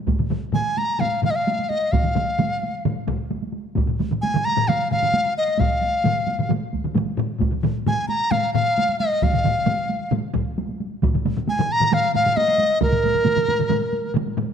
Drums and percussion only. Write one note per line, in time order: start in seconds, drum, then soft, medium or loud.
0.07 taiko medium
0.07 taiko low-mid medium
0.07 taiko mid medium
0.07 taiko high medium
0.19 taiko low-mid medium
0.19 taiko mid medium
0.19 taiko high soft
0.30 taiko low-mid medium
0.30 taiko mid medium
0.30 taiko high medium
0.43 taiko high soft
0.52 taiko low-mid medium
0.52 taiko mid medium
0.52 taiko high medium
0.65 taiko high soft
0.77 taiko high medium
0.89 taiko high soft
0.99 taiko low-mid medium
0.99 taiko mid medium
0.99 taiko high medium
1.13 taiko high soft
1.23 taiko low-mid medium
1.23 taiko mid medium
1.23 taiko high soft
1.36 taiko high soft
1.47 taiko high medium
1.59 taiko high soft
1.70 taiko high soft
1.82 taiko high soft
1.92 taiko loud
1.92 taiko low-mid medium
1.92 taiko mid medium
1.92 taiko high medium
2.04 taiko low-mid medium
2.04 taiko mid medium
2.04 taiko high soft
2.15 taiko low-mid medium
2.15 taiko mid medium
2.15 taiko high soft
2.28 taiko high soft
2.39 taiko low-mid medium
2.39 taiko mid medium
2.39 taiko high medium
2.52 taiko high soft
2.63 taiko high medium
2.75 taiko high soft
2.85 taiko low-mid medium
2.85 taiko mid medium
2.85 taiko high medium
2.97 taiko high soft
3.07 taiko medium
3.07 taiko low-mid medium
3.07 taiko mid medium
3.07 taiko high soft
3.18 taiko high soft
3.31 taiko high medium
3.42 taiko high soft
3.52 taiko high medium
3.75 taiko medium
3.75 taiko low-mid medium
3.75 taiko mid medium
3.75 taiko high medium
3.87 taiko low-mid medium
3.87 taiko mid medium
3.87 taiko high soft
3.99 taiko low-mid medium
3.99 taiko mid medium
3.99 taiko high soft
4.11 taiko low-mid medium
4.11 taiko mid medium
4.11 taiko high soft
4.23 taiko high medium
4.34 taiko low-mid medium
4.34 taiko mid loud
4.34 taiko high soft
4.47 taiko high medium
4.57 taiko low-mid loud
4.57 taiko mid medium
4.57 taiko high soft
4.68 taiko low-mid medium
4.68 taiko mid medium
4.68 taiko high medium
4.81 taiko high soft
4.91 taiko low-mid medium
4.91 taiko mid medium
4.91 taiko high medium
5.02 taiko low-mid medium
5.02 taiko mid medium
5.02 taiko high soft
5.14 taiko high medium
5.26 taiko high soft
5.48 taiko high soft
5.58 taiko medium
5.58 taiko low-mid medium
5.58 taiko mid medium
5.58 taiko high medium
5.81 taiko high medium
5.93 taiko high soft
6.04 taiko low-mid medium
6.04 taiko mid medium
6.04 taiko high medium
6.15 taiko high soft
6.27 taiko high medium
6.38 taiko low-mid medium
6.38 taiko mid medium
6.38 taiko high soft
6.49 taiko low-mid medium
6.49 taiko mid medium
6.49 taiko high medium
6.73 taiko medium
6.73 taiko high medium
6.84 taiko low-mid medium
6.84 taiko mid medium
6.84 taiko high soft
6.95 taiko low-mid medium
6.95 taiko mid medium
6.95 taiko high medium
7.06 taiko high medium
7.17 taiko low-mid medium
7.17 taiko mid medium
7.17 taiko high medium
7.29 taiko high soft
7.39 taiko medium
7.39 taiko low-mid medium
7.39 taiko mid medium
7.39 taiko high medium
7.51 taiko low-mid medium
7.51 taiko mid medium
7.51 taiko high soft
7.63 taiko low-mid medium
7.63 taiko mid medium
7.63 taiko high medium
7.75 taiko high soft
7.86 taiko low-mid medium
7.86 taiko mid loud
7.86 taiko high medium
7.97 taiko high soft
8.09 taiko high medium
8.21 taiko high soft
8.31 taiko low-mid loud
8.31 taiko mid loud
8.31 taiko high medium
8.45 taiko high soft
8.55 taiko low-mid loud
8.55 taiko mid medium
8.55 taiko high soft
8.67 taiko high soft
8.78 taiko high medium
8.89 taiko high soft
9.00 taiko high medium
9.12 taiko high soft
9.22 taiko medium
9.22 taiko low-mid medium
9.22 taiko mid medium
9.22 taiko high medium
9.34 taiko low-mid medium
9.34 taiko mid medium
9.34 taiko high soft
9.44 taiko low-mid medium
9.44 taiko mid medium
9.44 taiko high soft
9.56 taiko high soft
9.66 taiko low-mid medium
9.66 taiko mid loud
9.66 taiko high medium
9.78 taiko high soft
9.90 taiko high medium
10.01 taiko high soft
10.11 taiko low-mid medium
10.11 taiko mid loud
10.11 taiko high medium
10.24 taiko high soft
10.34 taiko medium
10.34 taiko low-mid medium
10.34 taiko mid loud
10.34 taiko high soft
10.48 taiko high soft
10.58 taiko high medium
10.69 taiko high soft
10.80 taiko high medium
10.92 taiko high soft
11.02 taiko loud
11.02 taiko low-mid medium
11.02 taiko mid medium
11.02 taiko high medium
11.14 taiko low-mid medium
11.14 taiko mid medium
11.14 taiko high soft
11.25 taiko low-mid medium
11.25 taiko mid medium
11.25 taiko high medium
11.37 taiko low-mid medium
11.37 taiko mid medium
11.37 taiko high soft
11.47 taiko high medium
11.58 taiko low-mid medium
11.58 taiko mid loud
11.58 taiko high soft
11.81 taiko low-mid loud
11.81 taiko mid loud
11.81 taiko high soft
11.92 taiko low-mid loud
11.92 taiko mid loud
11.92 taiko high medium
12.03 taiko high soft
12.14 taiko low-mid medium
12.14 taiko mid medium
12.14 taiko high medium
12.26 taiko low-mid medium
12.26 taiko mid medium
12.26 taiko high soft
12.37 taiko high medium
12.48 taiko high medium
12.59 taiko high medium
12.71 taiko high soft
12.81 taiko medium
12.81 taiko low-mid medium
12.81 taiko mid medium
12.81 taiko high medium
12.92 taiko low-mid medium
12.92 taiko mid medium
12.92 taiko high soft
13.04 taiko low-mid medium
13.04 taiko mid medium
13.04 taiko high medium
13.14 taiko low-mid medium
13.14 taiko mid medium
13.26 taiko low-mid medium
13.26 taiko mid medium
13.26 taiko high medium
13.36 taiko low-mid medium
13.36 taiko mid medium
13.36 taiko high soft
13.48 taiko low-mid medium
13.48 taiko mid medium
13.48 taiko high medium
13.59 taiko low-mid medium
13.59 taiko mid medium
13.59 taiko high soft
13.70 taiko low-mid loud
13.70 taiko mid loud
13.70 taiko high medium
13.83 taiko high soft
13.93 taiko high medium
14.05 taiko high soft
14.14 taiko low-mid loud
14.14 taiko mid loud
14.14 taiko high medium
14.27 taiko high medium
14.37 taiko low-mid medium
14.37 taiko mid loud
14.37 taiko high medium
14.50 taiko high soft